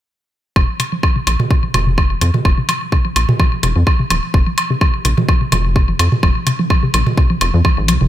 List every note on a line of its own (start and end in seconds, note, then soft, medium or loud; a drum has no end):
0.56 0.65 F1 loud
0.56 0.62 F3 medium
0.56 kick loud
0.56 low woodblock medium
0.80 0.86 C3 loud
0.80 closed hi-hat medium
0.80 low woodblock soft
0.92 0.98 F3 medium
1.03 kick loud
1.03 low woodblock medium
1.16 1.21 C3 loud
1.27 1.36 A#1 medium
1.27 1.33 F3 medium
1.27 closed hi-hat medium
1.27 low woodblock medium
1.40 mid tom medium
1.51 1.57 C3 loud
1.51 kick loud
1.51 low woodblock soft
1.63 1.68 F3 medium
1.74 2.17 F1 medium
1.74 closed hi-hat medium
1.74 mid tom medium
1.74 low woodblock medium
1.87 1.92 C3 loud
1.98 2.04 F3 medium
1.98 kick loud
1.98 low woodblock medium
2.21 2.31 F2 loud
2.21 2.27 C3 loud
2.21 closed hi-hat medium
2.21 low woodblock soft
2.34 2.39 F3 medium
2.34 mid tom medium
2.45 2.54 F1 loud
2.45 kick loud
2.45 low woodblock medium
2.58 2.63 C3 loud
2.69 2.75 F3 medium
2.69 closed hi-hat medium
2.69 low woodblock medium
2.92 2.98 C3 loud
2.92 kick loud
2.92 low woodblock soft
3.05 3.10 F3 medium
3.16 3.25 A#1 medium
3.16 closed hi-hat medium
3.16 low woodblock medium
3.29 3.34 C3 loud
3.29 mid tom loud
3.40 3.46 F3 medium
3.40 kick loud
3.40 low woodblock medium
3.63 3.72 F1 loud
3.63 3.69 C3 loud
3.63 closed hi-hat medium
3.63 low woodblock soft
3.76 3.84 F2 medium
3.76 3.81 F3 medium
3.87 kick loud
3.87 low woodblock medium
4.00 4.05 C3 loud
4.10 4.20 D#1 loud
4.10 4.16 F3 medium
4.10 closed hi-hat medium
4.10 low woodblock medium
4.34 4.43 F1 loud
4.34 4.40 C3 medium
4.34 kick loud
4.34 low woodblock soft
4.47 4.52 F3 medium
4.58 closed hi-hat medium
4.58 low woodblock medium
4.70 4.76 C3 loud
4.81 4.87 F3 medium
4.81 kick loud
4.81 low woodblock medium
5.05 5.14 A#1 medium
5.05 5.11 C3 loud
5.05 closed hi-hat medium
5.05 low woodblock soft
5.18 5.23 F3 medium
5.18 mid tom medium
5.29 kick loud
5.29 low woodblock medium
5.41 5.46 C3 loud
5.52 5.95 F1 medium
5.52 5.58 F3 medium
5.52 closed hi-hat medium
5.52 mid tom medium
5.52 low woodblock medium
5.76 5.82 C3 loud
5.76 kick loud
5.76 low woodblock soft
5.88 5.94 F3 medium
5.99 6.09 F2 loud
5.99 closed hi-hat medium
5.99 low woodblock medium
6.12 6.17 C3 loud
6.12 mid tom medium
6.23 6.32 F1 loud
6.23 6.29 F3 medium
6.23 kick loud
6.23 low woodblock medium
6.47 6.53 C3 loud
6.47 closed hi-hat medium
6.47 low woodblock soft
6.59 6.65 F3 medium
6.70 kick loud
6.70 low woodblock medium
6.83 6.88 C3 loud
6.94 7.03 A#1 medium
6.94 7.00 F3 medium
6.94 closed hi-hat medium
6.94 low woodblock medium
7.07 mid tom medium
7.17 7.24 C3 loud
7.17 kick loud
7.17 low woodblock soft
7.30 7.35 F3 medium
7.41 7.50 F1 loud
7.41 closed hi-hat medium
7.41 low woodblock medium
7.54 7.62 F2 medium
7.54 7.62 F3 medium
7.65 7.74 F3 medium
7.65 kick loud
7.65 low woodblock medium
7.78 7.90 G#1 loud
7.88 7.98 C2 loud
7.88 7.94 F3 medium
7.88 closed hi-hat medium
7.88 low woodblock soft
8.01 8.08 F1 medium
8.01 8.04 C3 loud